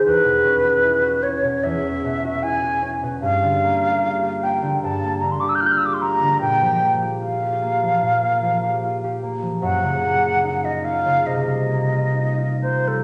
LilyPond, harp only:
\new Staff \with { instrumentName = "Harp" } { \time 4/4 \key g \dorian \tempo 4 = 75 <e, aes'>16 b,16 cis'16 fis'16 e'16 fis'16 cis'16 b,16 e,16 cis'16 b,16 fis'16 e'16 fis'16 cis'16 b,16 | g,16 d16 bes16 g'16 f'16 g'16 bes16 d16 g,16 bes16 d16 g'16 f'16 g'16 bes16 d16 | bes,16 f16 bes16 g'16 f'16 g'16 bes16 f16 bes,16 bes16 f16 g'16 f'16 g'16 bes16 f16 | ges,16 des16 bes16 f'16 ees'16 f'16 bes16 des16 c16 g16 bes16 f'16 ees'16 f'16 bes16 g16 | }